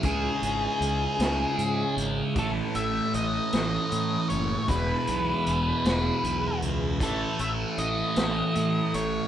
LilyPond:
<<
  \new Staff \with { instrumentName = "Lead electric guitar" } { \time 6/8 \key a \lydian \tempo 4. = 52 gis'2~ gis'8 r8 | a'8 e''8 dis''4. cis''8 | b'2~ b'8 r8 | a'8 e''8 dis''4. cis''8 | }
  \new Staff \with { instrumentName = "Transistor combo organ" } { \time 6/8 \key a \lydian << { <gis e' gis'>2. | <a fis' a'>2. | <gis b gis' b'>2. | <a cis' fis' a'>2. | } \\ { <cis' dis'>2.~ | <cis' dis'>2. | r2. | r2. | } >> }
  \new Staff \with { instrumentName = "Distorted electric guitar" } { \clef bass \time 6/8 \key a \lydian <cis gis cis'>2. | <a, e a>2. | <e, b, e>2. | <a, e a>2. | }
  \new Staff \with { instrumentName = "Fingered electric bass" } { \clef bass \time 6/8 \key a \lydian cis,8 gis,,8 cis,8 cis,8 gis,8 gis,,8 | a,,8 a,,8 a,,8 a,,8 a,8 fis,,8 | e,,8 b,,8 e,,8 e,,8 b,,8 cis,8 | a,,8 a,,8 a,,8 a,,8 a,8 a,,8 | }
  \new DrumStaff \with { instrumentName = "Drums" } \drummode { \time 6/8 <hh bd>8 hh8 hh8 <hh sn>8 hh8 hh8 | <hh bd>8 hh8 hh8 <hh sn>8 hh8 hh8 | <hh bd>8 hh8 hh8 <hh sn>8 hh8 hh8 | <hh bd>8 hh8 hh8 <hh sn>8 hh8 hh8 | }
>>